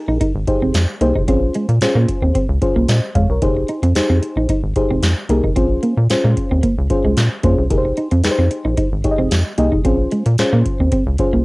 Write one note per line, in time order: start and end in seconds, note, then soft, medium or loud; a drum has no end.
0.00 0.24 D#4 medium
0.00 0.24 G4 medium
0.00 0.24 G#4 medium
0.00 0.24 A#4 loud
0.08 0.18 A#1 medium
0.08 0.17 D#4 medium
0.21 0.31 D#4 medium
0.21 kick loud
0.21 closed hi-hat loud
0.35 0.45 G#1 medium
0.47 0.86 D#4 medium
0.47 0.86 G4 medium
0.47 0.86 G#4 medium
0.47 0.86 C5 medium
0.47 muted clean electric guitar stroke soft
0.47 kick loud
0.47 closed hi-hat medium
0.61 0.72 F1 loud
0.61 0.71 C4 medium
0.74 0.86 F2 loud
0.74 muted clean electric guitar stroke soft
0.74 snare loud
0.74 clap medium
0.74 closed hi-hat medium
0.74 tambourine loud
1.01 1.13 C2 medium
1.01 1.12 A#3 medium
1.01 1.20 D#4 medium
1.01 1.20 G4 medium
1.01 1.21 G#4 medium
1.01 1.21 C5 loud
1.01 closed hi-hat medium
1.15 1.29 F1 medium
1.15 1.25 D#4 medium
1.15 kick medium
1.28 1.50 A#1 loud
1.28 1.39 C4 medium
1.28 1.66 C#4 medium
1.28 1.66 F4 medium
1.28 1.67 G#4 medium
1.28 1.67 C5 medium
1.28 kick loud
1.28 closed hi-hat medium
1.54 1.65 G#3 medium
1.54 closed hi-hat medium
1.69 1.79 A#2 medium
1.69 muted clean electric guitar stroke soft
1.69 closed hi-hat medium
1.81 1.87 A#2 medium
1.81 2.38 C#4 medium
1.81 2.39 F4 medium
1.81 2.39 G#4 medium
1.81 2.39 C5 loud
1.81 snare loud
1.81 clap medium
1.81 closed hi-hat medium
1.81 tambourine medium
1.95 2.06 A#2 loud
1.95 2.05 A#3 medium
2.08 muted clean electric guitar stroke soft
2.08 kick medium
2.08 closed hi-hat medium
2.22 2.33 D#2 medium
2.22 2.32 C4 medium
2.35 2.46 C4 medium
2.35 kick loud
2.35 closed hi-hat loud
2.49 2.59 C#2 medium
2.62 3.00 C#4 medium
2.62 3.00 F4 medium
2.62 3.00 G#4 medium
2.62 2.89 C5 medium
2.62 muted clean electric guitar stroke soft
2.62 kick loud
2.62 closed hi-hat medium
2.76 2.86 C2 medium
2.76 2.85 A#3 medium
2.88 3.00 A#2 loud
2.88 3.15 C5 medium
2.88 3.14 D#5 medium
2.88 snare loud
2.88 clap medium
2.88 closed hi-hat medium
2.88 tambourine medium
3.15 3.27 F2 medium
3.15 3.26 G#3 medium
3.15 3.29 C#5 medium
3.15 3.29 F5 medium
3.15 kick loud
3.15 closed hi-hat medium
3.29 3.40 C2 medium
3.29 3.56 A#4 medium
3.29 3.55 C#5 medium
3.42 3.64 F1 loud
3.42 3.81 D#4 medium
3.42 3.81 G4 medium
3.42 3.81 G#4 medium
3.42 3.81 C5 medium
3.42 kick loud
3.42 closed hi-hat medium
3.57 muted clean electric guitar stroke soft
3.68 3.79 D#4 medium
3.68 closed hi-hat medium
3.83 3.93 F2 loud
3.83 3.92 C4 medium
3.83 closed hi-hat soft
3.95 4.52 D#4 medium
3.95 4.53 G4 medium
3.95 4.53 G#4 medium
3.95 4.53 C5 medium
3.95 snare loud
3.95 clap medium
3.95 closed hi-hat medium
3.95 tambourine medium
4.09 4.20 F2 medium
4.09 4.19 C4 medium
4.22 muted clean electric guitar stroke soft
4.22 closed hi-hat medium
4.36 4.47 A#1 medium
4.36 4.46 D#4 medium
4.49 4.60 D#4 medium
4.49 kick loud
4.49 closed hi-hat loud
4.63 4.74 G#1 medium
4.76 5.15 D#4 medium
4.76 5.15 G4 medium
4.76 5.15 G#4 medium
4.76 5.15 C5 medium
4.76 muted clean electric guitar stroke soft
4.76 kick loud
4.76 closed hi-hat medium
4.90 5.01 F1 loud
4.90 5.00 C4 medium
5.02 5.14 F2 loud
5.02 muted clean electric guitar stroke soft
5.02 snare loud
5.02 clap medium
5.02 closed hi-hat medium
5.02 tambourine medium
5.29 5.41 C2 medium
5.29 5.40 A#3 medium
5.29 5.49 D#4 medium
5.29 5.49 G4 medium
5.29 5.49 G#4 medium
5.29 5.49 A#4 loud
5.29 closed hi-hat medium
5.44 5.58 F1 medium
5.44 5.53 D#4 medium
5.44 kick medium
5.56 5.79 A#1 loud
5.56 5.67 C4 medium
5.56 5.95 C#4 medium
5.56 5.95 F4 medium
5.56 5.95 G#4 medium
5.56 5.95 C5 medium
5.56 kick loud
5.56 closed hi-hat loud
5.83 5.93 A#3 medium
5.83 closed hi-hat medium
5.97 6.08 A#2 medium
5.97 muted clean electric guitar stroke soft
6.10 6.67 C#4 medium
6.10 6.67 F4 medium
6.10 6.67 G#4 medium
6.10 6.67 C5 loud
6.10 snare loud
6.10 clap medium
6.10 closed hi-hat medium
6.10 tambourine medium
6.24 6.35 A#2 loud
6.24 6.33 G#3 medium
6.37 muted clean electric guitar stroke soft
6.37 kick medium
6.37 closed hi-hat medium
6.51 6.62 D#2 medium
6.51 6.60 C4 medium
6.63 6.74 A#3 medium
6.63 kick loud
6.63 closed hi-hat loud
6.78 6.88 C#2 medium
6.90 7.29 C#4 medium
6.90 7.29 F4 medium
6.90 7.29 G#4 medium
6.90 7.29 C5 medium
6.90 muted clean electric guitar stroke soft
6.90 kick loud
6.90 closed hi-hat medium
7.04 7.15 C2 medium
7.04 7.14 G#3 medium
7.17 7.29 A#2 medium
7.17 snare loud
7.17 clap medium
7.17 closed hi-hat medium
7.17 tambourine loud
7.43 7.56 F2 medium
7.43 7.54 A#3 medium
7.43 7.63 C#4 medium
7.43 7.63 F4 medium
7.43 7.63 G#4 medium
7.43 7.63 C5 loud
7.43 kick loud
7.43 closed hi-hat medium
7.58 7.68 C2 medium
7.70 7.93 F1 loud
7.70 8.09 D#4 medium
7.70 8.09 G4 medium
7.70 8.09 G#4 medium
7.70 7.78 A#4 medium
7.70 kick loud
7.70 closed hi-hat loud
7.78 8.13 C5 medium
7.85 muted clean electric guitar stroke soft
7.97 8.08 D#4 medium
7.97 closed hi-hat medium
8.11 8.22 F2 loud
8.11 8.21 C4 medium
8.11 closed hi-hat medium
8.24 8.30 F2 soft
8.24 8.81 D#4 medium
8.24 8.81 G4 medium
8.24 8.81 G#4 medium
8.24 8.31 B4 medium
8.24 snare loud
8.24 clap medium
8.24 closed hi-hat medium
8.24 tambourine medium
8.31 8.85 C5 loud
8.38 8.49 F2 medium
8.38 8.48 C4 medium
8.51 muted clean electric guitar stroke soft
8.51 closed hi-hat medium
8.65 8.76 A#1 medium
8.65 8.74 D#4 medium
8.77 8.88 D#4 medium
8.77 kick loud
8.77 closed hi-hat medium
8.92 9.03 G#1 medium
9.04 9.43 D#4 medium
9.04 9.43 G4 medium
9.04 9.43 G#4 medium
9.04 9.12 C#5 medium
9.04 muted clean electric guitar stroke soft
9.04 kick loud
9.04 closed hi-hat medium
9.11 9.46 D#5 medium
9.18 9.29 F1 loud
9.18 9.28 C4 medium
9.31 9.43 F2 loud
9.31 muted clean electric guitar stroke soft
9.31 snare loud
9.31 clap medium
9.31 closed hi-hat loud
9.31 tambourine loud
9.58 9.70 C2 medium
9.58 9.69 A#3 medium
9.58 9.77 D#4 medium
9.58 9.78 G4 medium
9.58 9.78 G#4 medium
9.58 9.78 D#5 medium
9.58 closed hi-hat medium
9.72 9.86 F1 medium
9.72 9.81 D#4 medium
9.72 kick medium
9.85 10.07 A#1 loud
9.85 9.95 C4 medium
9.85 10.23 C#4 medium
9.85 10.24 F4 medium
9.85 10.24 G#4 medium
9.85 10.24 C5 medium
9.85 kick loud
9.85 closed hi-hat medium
10.11 10.22 G#3 medium
10.11 closed hi-hat medium
10.26 10.36 A#2 medium
10.26 muted clean electric guitar stroke soft
10.26 closed hi-hat medium
10.38 10.96 C#4 medium
10.38 10.96 F4 medium
10.38 10.96 G#4 medium
10.38 10.96 C5 medium
10.38 snare loud
10.38 clap medium
10.38 closed hi-hat medium
10.38 tambourine medium
10.53 10.63 A#2 loud
10.53 10.62 A#3 medium
10.66 muted clean electric guitar stroke soft
10.66 kick medium
10.66 closed hi-hat medium
10.80 10.90 D#2 medium
10.80 10.89 C4 medium
10.92 11.03 C4 medium
10.92 kick loud
10.92 closed hi-hat loud
11.06 11.17 C#2 loud
11.18 11.45 C#4 medium
11.18 11.45 F4 medium
11.18 11.45 G#4 medium
11.18 11.45 C5 medium
11.18 muted clean electric guitar stroke soft
11.18 kick loud
11.18 closed hi-hat medium
11.33 11.44 C2 medium
11.33 11.42 A#3 medium